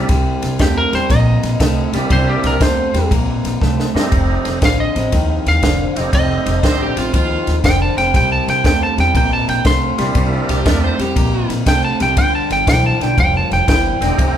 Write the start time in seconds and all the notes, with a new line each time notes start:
0.09 C2 C3 G3, kick, snare, ride
0.42 C2, snare, ride
0.59 E2 C3 A3 G4, kick, snare, ride
0.78 A#4
0.93 E2 C3 G3 C5, snare, ride
1.09 A#1 C3 A#3 D#5, kick, snare, ride
1.43 A#1, snare, ride
1.59 C2 C3 A3, kick, snare, ride
1.93 C2 C3 G3 A#3 D4 E4, snare, ride
2.10 C2 C3 G3 C5, kick, ride
2.29 G4
2.43 C2 A#4, snare, ride
2.60 E2 C3 A3 C5, kick, snare, ride
2.94 E2 C3 G3, snare, ride
3.11 A#1 C3 A#3, kick, ride
3.44 A#1, snare, ride
3.61 C2 C3 A3, kick, snare
3.80 snare
3.94 G2 C3 G3 A3 C4 D#4, snare
4.11 F1 F2 C3, kick, ride
4.45 F1, snare, ride
4.61 A1 F2 D3 F5, kick, snare, ride
4.80 D#5
4.95 A1 F2 C3, snare, ride
5.12 D#2 F2 D#3, kick, snare, ride
5.46 D#2 F5, snare, ride
5.62 F1 F2 D3, kick, snare, ride
5.96 F1 F2 C3 G3 A3 C4 D#4 D#5, snare, ride
6.13 F1 F2 C3 D#5, kick, ride
6.46 F1, snare, ride
6.63 A1 F2 D3 G3 A3 C4 D#4 C5, kick, snare, ride
6.82 G4
6.96 A1 F2 C3 F4, snare, ride
7.13 D#2 F2 D#3 F4, kick, ride
7.47 D#2, snare, ride
7.64 F1 F2 D3 G5, kick, snare, ride
7.82 A5
7.97 F1 F2 C3 G5, snare, ride
8.14 C2 C3 G3 G5, kick, snare, ride
8.32 A5
8.48 C2 G5, snare, ride
8.64 E2 C3 A3 G5, kick, snare, ride
8.83 A5
8.97 E2 C3 G3 G5, snare, ride
9.14 A#1 C3 A#3 G5, kick, ride
9.33 A5
9.48 A#1 G5, snare, ride
9.64 C2 C3 A3 C6, kick, snare, ride
9.98 C2 C3 G3 A#3 D4 E4, snare, ride
10.15 C2 C3 G3, kick, ride
10.49 C2 G4, snare, ride
10.65 E2 C3 G3 A3 A#3 D4 E4 A#4, kick, snare, ride
10.84 C5
10.99 E2 C3 G3 G4, snare, ride
11.15 A#1 C3 A#3, kick, ride
11.49 A#1, snare, ride
11.66 C2 C3 A3 G5, kick, snare, ride
11.85 A5
11.99 C2 C3 G3 G5, snare, ride
12.17 G1 G2 D3 G5, kick, ride
12.35 A5
12.50 G1 G5, snare, ride
12.67 B1 G2 E3 G5, kick, snare, ride
12.86 A5
13.00 B1 G2 D3 G5, snare, ride
13.17 F1 G2 F3 G5, kick, ride
13.37 A5
13.51 F1 G5, snare, ride
13.68 G1 G2 E3 G5, kick, snare, ride
14.01 E1 G2 D3 A3 C4 D#4 G4, snare, ride
14.18 F1 F2 C3, kick, ride